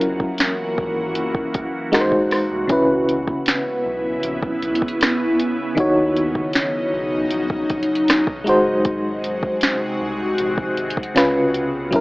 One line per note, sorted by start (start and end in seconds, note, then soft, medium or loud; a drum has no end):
0.00 0.26 F#1 loud
0.00 1.91 E3 medium
0.00 1.88 F#3 medium
0.00 1.91 A#3 medium
0.00 1.89 C#4 medium
0.00 1.90 E4 medium
0.00 1.91 F#4 medium
0.00 1.91 A#4 medium
0.00 closed hi-hat medium
0.20 kick medium
0.38 snare loud
0.38 closed hi-hat medium
0.78 1.17 G#1 medium
0.78 kick medium
1.15 1.48 F#1 loud
1.15 closed hi-hat medium
1.35 kick loud
1.54 1.71 F#1 medium
1.54 kick medium
1.54 closed hi-hat medium
1.92 2.09 G#1 loud
1.92 2.69 G#3 medium
1.92 2.70 D#4 medium
1.92 2.70 F#4 medium
1.92 2.00 A#4 medium
1.92 cross-stick loud
1.92 snare loud
1.92 closed hi-hat medium
2.01 2.74 C5 medium
2.12 2.28 F#1 loud
2.12 kick medium
2.31 cross-stick medium
2.31 open hi-hat medium
2.51 2.67 C2 medium
2.67 3.34 C#2 loud
2.67 5.72 C#3 medium
2.67 8.43 C#3 medium
2.67 5.75 B3 medium
2.67 5.73 C#4 medium
2.67 5.75 E4 medium
2.67 5.74 E4 medium
2.67 kick loud
2.67 closed hi-hat medium
2.72 5.75 B4 medium
3.09 closed hi-hat medium
3.27 kick medium
3.46 snare loud
3.46 closed hi-hat medium
3.85 4.17 B1 loud
4.23 4.56 A#1 loud
4.23 closed hi-hat medium
4.42 kick medium
4.62 4.78 B1 medium
4.62 closed hi-hat medium
4.75 closed hi-hat medium
4.82 kick loud
4.88 closed hi-hat medium
5.01 cross-stick loud
5.01 snare loud
5.01 closed hi-hat medium
5.40 closed hi-hat medium
5.75 6.42 D#2 loud
5.75 8.42 D#3 medium
5.75 8.44 F#3 medium
5.75 8.42 D#4 medium
5.75 8.44 D#4 medium
5.75 8.43 F#4 medium
5.75 kick loud
5.75 closed hi-hat medium
5.80 8.44 C#5 medium
6.17 closed hi-hat medium
6.35 kick medium
6.53 snare loud
6.53 closed hi-hat medium
6.93 7.25 B1 loud
7.31 7.64 A#1 loud
7.31 closed hi-hat medium
7.50 kick loud
7.70 7.86 A#1 loud
7.70 kick medium
7.70 closed hi-hat medium
7.83 closed hi-hat medium
7.95 closed hi-hat medium
8.08 8.16 B1 soft
8.08 cross-stick loud
8.08 snare loud
8.08 closed hi-hat medium
8.27 8.48 B1 medium
8.27 kick medium
8.44 9.43 G#1 loud
8.44 11.13 C3 medium
8.44 11.11 G#3 medium
8.44 11.13 G#3 medium
8.44 11.12 D#4 medium
8.44 11.13 F#4 medium
8.44 11.12 F#4 medium
8.44 closed hi-hat medium
8.49 11.13 C5 medium
8.85 kick loud
8.85 closed hi-hat medium
9.24 closed hi-hat medium
9.43 kick loud
9.61 snare loud
9.61 closed hi-hat medium
10.01 10.33 C2 loud
10.38 10.71 A#1 loud
10.38 closed hi-hat medium
10.58 kick loud
10.77 10.94 G#1 medium
10.77 closed hi-hat medium
10.90 closed hi-hat medium
10.97 kick loud
11.03 closed hi-hat medium
11.15 11.94 C#2 loud
11.15 11.92 C#3 medium
11.15 11.91 C#4 medium
11.15 11.93 F4 medium
11.15 11.94 B4 medium
11.15 cross-stick loud
11.15 snare loud
11.15 closed hi-hat medium
11.54 closed hi-hat medium
11.91 12.01 F#1 loud
11.91 12.01 F#3 medium
11.91 12.01 C#4 medium
11.91 12.01 E4 medium
11.91 kick loud
11.91 closed hi-hat medium
11.96 12.01 A#4 medium